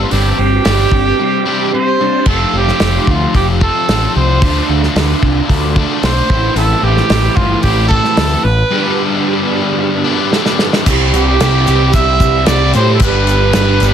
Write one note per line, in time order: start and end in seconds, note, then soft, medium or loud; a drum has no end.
0.00 0.10 C4 medium
0.00 0.11 D4 loud
0.00 0.13 F4 medium
0.10 0.32 G1 loud
0.10 1.45 G2 medium
0.10 0.37 G3 medium
0.10 0.37 C4 medium
0.10 0.38 D4 medium
0.10 1.73 G4 medium
0.10 open hi-hat soft
0.38 0.58 G1 medium
0.38 0.63 G3 medium
0.38 0.63 C4 medium
0.63 0.85 G1 medium
0.63 0.90 G3 medium
0.63 0.91 C4 medium
0.63 0.91 D4 medium
0.63 1.45 G4 medium
0.63 snare loud
0.63 open hi-hat medium
0.92 1.12 G1 medium
0.92 1.17 G3 medium
0.92 1.17 C4 medium
0.92 1.98 D4 medium
0.92 kick medium
1.20 1.44 G3 medium
1.20 1.44 C4 medium
1.46 1.71 G3 medium
1.46 1.71 C4 medium
1.46 1.72 D4 medium
1.46 2.27 G4 medium
1.74 1.98 G3 medium
1.74 1.98 C4 medium
1.74 2.29 C5 medium
2.00 2.25 G3 medium
2.00 2.25 C4 medium
2.00 2.27 D4 medium
2.25 2.44 F1 medium
2.25 4.39 F2 medium
2.25 4.40 C3 medium
2.25 3.59 F3 medium
2.25 3.62 A3 medium
2.25 3.61 C4 medium
2.25 2.54 A4 medium
2.25 kick loud
2.25 crash medium
2.30 3.59 F4 medium
2.53 2.71 F1 medium
2.57 3.12 G4 medium
2.68 snare soft
2.80 2.98 F1 medium
2.80 snare loud
2.80 open hi-hat soft
3.07 3.25 D2 medium
3.07 3.35 F4 medium
3.07 kick medium
3.34 3.69 F1 medium
3.34 3.47 G4 medium
3.34 kick medium
3.34 open hi-hat soft
3.60 3.87 F3 medium
3.60 3.89 A3 medium
3.60 3.90 C4 medium
3.60 3.86 F4 medium
3.60 4.12 A4 loud
3.60 kick medium
3.88 4.06 A1 medium
3.88 4.39 F3 medium
3.88 4.41 A3 medium
3.88 4.42 C4 medium
3.88 4.42 F4 medium
3.88 snare loud
3.88 open hi-hat soft
4.16 4.42 C2 medium
4.16 4.65 C5 medium
4.40 4.60 D2 medium
4.40 5.74 D3 medium
4.40 5.75 A3 medium
4.40 5.75 D4 medium
4.40 5.75 F4 medium
4.40 kick loud
4.40 open hi-hat soft
4.69 4.86 D2 medium
4.83 snare soft
4.96 5.13 D2 medium
4.96 snare loud
4.96 open hi-hat medium
5.23 5.40 C2 medium
5.23 kick medium
5.49 5.84 D2 medium
5.49 kick medium
5.49 open hi-hat soft
5.76 6.00 D3 medium
5.76 6.02 A3 medium
5.76 6.02 D4 medium
5.76 6.01 F4 medium
5.76 kick medium
6.02 6.20 B1 medium
6.02 6.28 D3 medium
6.02 6.28 A3 medium
6.02 6.29 D4 medium
6.02 6.59 C5 loud
6.02 snare loud
6.02 open hi-hat soft
6.06 6.30 F4 medium
6.27 6.48 A1 medium
6.27 7.61 A2 medium
6.27 7.62 E3 loud
6.27 7.62 A3 medium
6.27 7.63 C4 loud
6.27 7.63 E4 loud
6.27 kick medium
6.55 6.73 A1 medium
6.55 6.85 A4 medium
6.55 open hi-hat soft
6.83 7.00 A1 medium
6.83 7.37 G4 loud
6.97 snare soft
7.10 7.28 A1 medium
7.10 snare loud
7.10 open hi-hat medium
7.36 7.54 G1 medium
7.36 7.62 F4 medium
7.36 kick medium
7.62 7.99 A1 loud
7.62 7.89 A2 medium
7.62 7.89 E3 medium
7.62 7.90 A3 medium
7.62 7.89 C4 medium
7.62 7.88 G4 medium
7.62 kick medium
7.62 open hi-hat soft
7.67 7.88 E4 medium
7.88 8.44 E3 medium
7.88 8.43 A3 medium
7.88 8.43 C4 medium
7.88 8.42 E4 medium
7.88 8.45 A4 loud
7.88 kick medium
7.93 8.44 A2 medium
8.04 snare soft
8.17 8.35 D2 medium
8.17 snare loud
8.17 open hi-hat soft
8.44 8.62 A1 medium
8.44 8.98 B4 loud
8.70 10.04 G2 medium
8.70 10.04 D3 medium
8.70 10.86 F3 medium
8.70 10.05 G3 medium
8.70 10.05 B3 medium
8.70 10.03 D4 medium
8.70 10.86 G4 loud
10.04 10.31 D3 medium
10.04 10.32 G3 medium
10.04 10.31 B3 medium
10.04 10.30 D4 medium
10.08 10.30 G2 medium
10.31 10.84 G2 medium
10.31 10.85 D3 medium
10.31 10.85 G3 medium
10.31 10.86 B3 loud
10.31 10.86 D4 medium
10.31 snare medium
10.46 snare medium
10.59 snare medium
10.73 snare medium
10.86 11.12 C2 loud
10.86 11.39 C3 medium
10.86 11.40 E3 medium
10.86 11.40 G3 medium
10.86 11.40 C4 loud
10.86 11.41 E4 medium
10.86 11.42 G4 loud
10.86 kick loud
10.86 crash loud
10.86 crash medium
10.86 shaker loud
11.13 11.39 C2 medium
11.13 11.90 G4 loud
11.13 crash medium
11.13 shaker medium
11.40 11.66 C2 medium
11.40 11.67 C3 medium
11.40 11.66 E3 medium
11.40 11.68 G3 medium
11.40 11.68 C4 medium
11.40 11.68 E4 medium
11.40 11.68 G4 medium
11.40 snare loud
11.40 crash medium
11.40 shaker medium
11.67 11.93 C2 medium
11.67 11.93 C3 medium
11.67 11.93 E3 medium
11.67 11.95 G3 medium
11.67 11.95 C4 medium
11.67 11.95 E4 medium
11.67 11.96 G4 medium
11.67 crash medium
11.67 shaker medium
11.93 12.19 C2 medium
11.93 12.47 C3 loud
11.93 12.47 E3 medium
11.93 12.47 G3 loud
11.93 12.47 C4 medium
11.93 12.48 E4 loud
11.93 12.49 G4 loud
11.93 12.48 E5 loud
11.93 kick loud
11.93 crash medium
11.93 shaker medium
12.20 12.46 C2 medium
12.20 kick medium
12.20 crash medium
12.20 shaker medium
12.46 12.73 C2 medium
12.46 12.73 C3 medium
12.46 12.74 E3 medium
12.46 12.75 G3 medium
12.46 12.74 C4 loud
12.46 12.75 E4 loud
12.46 12.76 G4 loud
12.46 12.74 D5 loud
12.46 snare loud
12.46 crash medium
12.46 shaker medium
12.73 13.00 A2 medium
12.73 12.99 C3 medium
12.73 13.00 E3 loud
12.73 13.01 G3 loud
12.73 13.00 C4 medium
12.73 13.00 E4 loud
12.73 13.03 G4 loud
12.73 12.93 C5 loud
12.73 crash medium
12.73 shaker medium
12.94 13.03 A4 medium
13.00 13.51 G1 loud
13.00 13.52 G2 medium
13.00 13.53 D3 medium
13.00 13.54 G3 loud
13.00 13.54 B3 loud
13.00 13.56 G4 loud
13.00 13.94 B4 loud
13.00 kick loud
13.00 crash medium
13.00 shaker medium
13.04 13.55 D4 loud
13.27 crash medium
13.27 shaker medium
13.53 13.80 G1 medium
13.53 13.80 G2 medium
13.53 13.80 D3 medium
13.53 13.81 G3 medium
13.53 13.82 B3 medium
13.53 13.82 D4 medium
13.53 13.81 G4 medium
13.53 snare loud
13.53 crash medium
13.53 shaker medium
13.80 13.94 G1 medium
13.80 13.94 G2 medium
13.80 13.94 D3 medium
13.80 13.94 G3 medium
13.80 13.94 B3 medium
13.80 13.94 D4 loud
13.80 13.94 G4 medium
13.80 crash medium
13.80 shaker medium